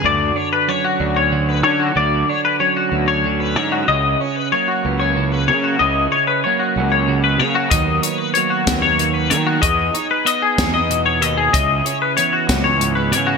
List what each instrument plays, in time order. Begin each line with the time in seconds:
0.04 fingered electric bass D2, clean electric guitar D3 F#4 D5
0.36 clean electric guitar D4 C#5
0.53 clean electric guitar B4
0.68 clean electric guitar F#3 C#4 C#5
0.84 clean electric guitar F#4
1.00 fingered electric bass D2, clean electric guitar D4
1.16 clean electric guitar C#5
1.32 clean electric guitar D3 F#4
1.49 clean electric guitar B4
1.63 fingered electric bass D3, clean electric guitar C#4 C#5
1.80 clean electric guitar F#4
1.96 fingered electric bass D2, clean electric guitar D3 F#4 D5
2.29 clean electric guitar D4 C#5
2.45 clean electric guitar B4
2.60 clean electric guitar F#3 C#4 C#5
2.77 clean electric guitar F#4
2.92 fingered electric bass D2, clean electric guitar B3
3.08 clean electric guitar D4 C#5
3.25 clean electric guitar D3 F#4
3.40 clean electric guitar B4
3.56 fingered electric bass G#2, clean electric guitar C#4 C#5
3.72 clean electric guitar F#4
3.88 fingered electric bass C#2, clean electric guitar C#3 E4 D#5
4.20 clean electric guitar C#4 C#5
4.36 clean electric guitar B4
4.52 clean electric guitar F#3 A#3 C#5
4.68 clean electric guitar F#4
4.85 fingered electric bass C#2, clean electric guitar B3
5.00 clean electric guitar C#4 C#5
5.17 clean electric guitar C#3 E4
5.32 clean electric guitar F#4 B4
5.48 fingered electric bass C#3, clean electric guitar A#3 C#5
5.64 clean electric guitar F#4
5.79 fingered electric bass C#2, clean electric guitar C#3 E4 D#5
6.12 clean electric guitar C#4 C#5
6.27 clean electric guitar B4
6.44 clean electric guitar F#3 A#3 C#5
6.59 clean electric guitar F#4
6.76 fingered electric bass C#2, clean electric guitar C#4
6.92 clean electric guitar C#5
7.08 clean electric guitar C#3 F#4
7.24 clean electric guitar B4
7.38 fingered electric bass C#3, clean electric guitar A#3 C#5
7.55 clean electric guitar F#4
7.70 fingered electric bass D#2, clean electric guitar D#3 F#3 D#5, kick, closed hi-hat
7.75 clean electric guitar A#3 B3 F#4
8.02 clean electric guitar B3 C#5, closed hi-hat
8.18 clean electric guitar B4
8.34 clean electric guitar F#3 A#3 C#5, closed hi-hat
8.50 clean electric guitar F#4
8.67 fingered electric bass D#2, clean electric guitar B3, kick, snare, closed hi-hat
8.82 clean electric guitar C#5
8.99 clean electric guitar D#3 F#4, closed hi-hat
9.14 clean electric guitar B4
9.30 fingered electric bass D#3, clean electric guitar A#3 C#5, closed hi-hat
9.47 clean electric guitar F#4
9.61 fingered electric bass E2, clean electric guitar G#4 D#5, kick, closed hi-hat
9.94 clean electric guitar D#4 C#5, closed hi-hat
10.11 clean electric guitar B4
10.25 clean electric guitar B3 D#5, closed hi-hat
10.42 clean electric guitar G#4
10.58 fingered electric bass E2, clean electric guitar D#4, kick, snare, closed hi-hat
10.74 clean electric guitar D#5
10.90 clean electric guitar B2 F#4, closed hi-hat
11.06 clean electric guitar C#5
11.21 fingered electric bass D#2, clean electric guitar B3 D#5, closed hi-hat
11.37 clean electric guitar G#4
11.53 fingered electric bass C#2, clean electric guitar C#3 E4 D#5, kick, closed hi-hat
11.85 clean electric guitar C#4 C#5, closed hi-hat
12.02 clean electric guitar B4
12.17 clean electric guitar E3 B3 C#5, closed hi-hat
12.33 clean electric guitar F#4
12.49 fingered electric bass C#2, clean electric guitar C#4, kick, snare, closed hi-hat
12.64 clean electric guitar C#5
12.80 clean electric guitar G#2 E4, closed hi-hat
12.95 clean electric guitar F#4 B4
13.12 fingered electric bass C#3, clean electric guitar B3 C#5, closed hi-hat
13.27 clean electric guitar F#4